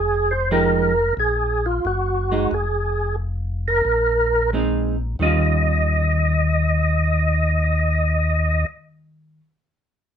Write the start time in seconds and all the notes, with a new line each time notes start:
Already playing: F1 G#4
0.31 C5
0.51 F3 G#3 D#4 G4 A#4
1.17 A#1 G#4
1.66 F4
1.85 F#1 F#4
2.32 G#3 D#4
2.51 F1 G#4
3.68 A#4
3.85 A#1
4.53 G#3 C4 D#4
5.19 D#2 D#3 G3 C#4 F4 D#5